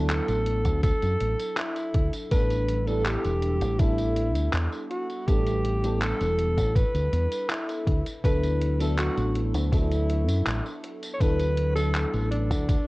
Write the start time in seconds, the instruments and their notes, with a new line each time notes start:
Already playing: fingered electric bass D2, fm electric piano F#3 B3 D4 E4 A4
0.09 alto saxophone A4, clap, closed hi-hat, tambourine
0.28 fingered electric bass A1, closed hi-hat, tambourine
0.46 closed hi-hat
0.65 fingered electric bass D2, kick, closed hi-hat, tambourine
0.83 alto saxophone A4, kick, closed hi-hat, tambourine
1.02 fingered electric bass F#2, closed hi-hat, tambourine
1.20 fingered electric bass A1, closed hi-hat
1.39 closed hi-hat, tambourine
1.57 alto saxophone E4, clap, closed hi-hat, tambourine
1.76 closed hi-hat, tambourine
1.94 fingered electric bass D2, kick, closed hi-hat
2.13 closed hi-hat, tambourine
2.31 fingered electric bass A1, fm electric piano G3 B3 D4 E4 A4, alto saxophone B4, kick, closed hi-hat, tambourine
2.50 closed hi-hat, tambourine
2.68 closed hi-hat
2.86 fm electric piano G3 B3 D4 E4 A4, alto saxophone A4, closed hi-hat, tambourine
3.05 alto saxophone G4, clap, closed hi-hat, tambourine
3.24 fingered electric bass E1, closed hi-hat, tambourine
3.42 closed hi-hat
3.61 fingered electric bass A1, closed hi-hat, tambourine
3.79 fm electric piano G3 B3 D4 E4 A4, alto saxophone E4, kick, closed hi-hat, tambourine
3.98 closed hi-hat, tambourine
4.17 closed hi-hat
4.36 fingered electric bass D2, closed hi-hat, tambourine
4.54 fingered electric bass E2, clap, closed hi-hat, tambourine
4.73 tambourine
4.90 alto saxophone F#4, closed hi-hat
5.10 closed hi-hat, tambourine
5.27 fingered electric bass A1, fm electric piano G3 B3 D4 E4 A4, alto saxophone G4, kick, closed hi-hat, tambourine
5.46 closed hi-hat, tambourine
5.65 closed hi-hat
5.83 fm electric piano G3 B3 D4 E4 A4, closed hi-hat, tambourine
6.01 alto saxophone A4, clap, closed hi-hat, tambourine
6.21 fingered electric bass E1, closed hi-hat, tambourine
6.39 closed hi-hat
6.58 fingered electric bass A1, kick, closed hi-hat, tambourine
6.76 alto saxophone B4, kick, closed hi-hat, tambourine
6.95 fingered electric bass D2, closed hi-hat, tambourine
7.13 fingered electric bass E2, closed hi-hat
7.32 closed hi-hat, tambourine
7.50 alto saxophone E4, clap, closed hi-hat, tambourine
7.69 closed hi-hat, tambourine
7.87 fingered electric bass D2, kick, closed hi-hat
8.06 closed hi-hat, tambourine
8.24 fingered electric bass D2, fm electric piano F#3 B3 D4 E4 A4, alto saxophone B4, kick, closed hi-hat, tambourine
8.43 closed hi-hat, tambourine
8.61 closed hi-hat
8.79 fm electric piano F#3 B3 D4 E4 A4, alto saxophone A4, closed hi-hat, tambourine
8.98 alto saxophone F#4, clap, closed hi-hat, tambourine
9.17 fingered electric bass A1, closed hi-hat, tambourine
9.35 closed hi-hat
9.54 fingered electric bass D2, closed hi-hat, tambourine
9.71 fm electric piano F#3 B3 D4 E4 A4, alto saxophone E4, kick, closed hi-hat, tambourine
9.91 closed hi-hat, tambourine
10.09 closed hi-hat
10.28 fingered electric bass F#2, closed hi-hat, tambourine
10.46 fingered electric bass A1, clap, closed hi-hat, tambourine
10.66 tambourine
10.84 closed hi-hat
11.03 closed hi-hat, tambourine
11.14 alto saxophone C#5
11.20 fingered electric bass D2, fm electric piano F#3 B3 D4 E4 A4, alto saxophone B4, kick, closed hi-hat, tambourine
11.40 closed hi-hat, tambourine
11.58 closed hi-hat
11.75 fm electric piano F#3 B3 D4 E4 A4, alto saxophone A4, closed hi-hat, tambourine
11.95 clap, closed hi-hat, tambourine
12.14 fingered electric bass A1, closed hi-hat, tambourine
12.31 alto saxophone D4, closed hi-hat
12.51 fingered electric bass D2, kick, closed hi-hat, tambourine
12.69 kick, closed hi-hat, tambourine